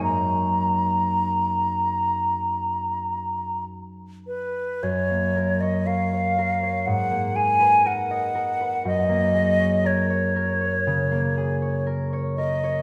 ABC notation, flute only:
X:1
M:4/4
L:1/16
Q:1/4=59
K:F#
V:1 name="Flute"
a12 z2 B2 | c3 d e4 f2 g2 f4 | d4 c8 z2 d2 |]